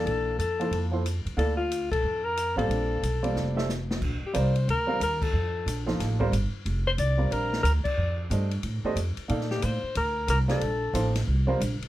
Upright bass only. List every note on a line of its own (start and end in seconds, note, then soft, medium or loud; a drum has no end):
0.06 0.36 A#1 medium
0.39 0.69 F2 medium
0.71 1.21 F2 medium
1.25 1.36 F2 medium
1.37 1.87 D2 medium
1.92 2.03 B1 medium
2.03 2.53 F2 medium
2.56 2.68 A1 medium
2.69 3.00 A#1 medium
3.03 3.33 B1 medium
3.35 3.98 F1 medium
4.02 4.21 A#1 medium
4.22 muted upright bass stroke soft
4.35 4.67 C2 medium
4.68 5.00 D2 medium
5.00 5.32 D#2 medium
5.33 5.65 F2 medium
5.66 5.98 A#1 medium
6.00 6.31 A1 medium
6.32 6.51 G1 medium
6.53 muted upright bass stroke soft
6.65 6.97 F1 medium
6.98 7.30 C2 medium
7.31 7.63 A#1 medium
7.63 7.83 D2 medium
7.97 8.29 F2 medium
8.30 8.62 G2 medium
8.63 8.82 A2 medium
8.84 muted upright bass stroke soft
8.96 9.15 F2 medium
9.17 muted upright bass stroke soft
9.30 9.62 A#2 medium
9.63 9.82 A2 medium
9.83 muted upright bass stroke soft
9.96 10.27 D2 medium
10.28 10.60 C2 loud
10.61 10.93 A#1 medium
10.93 11.26 A1 medium
11.27 11.59 C2 medium
11.60 11.80 A#1 medium
11.81 muted upright bass stroke soft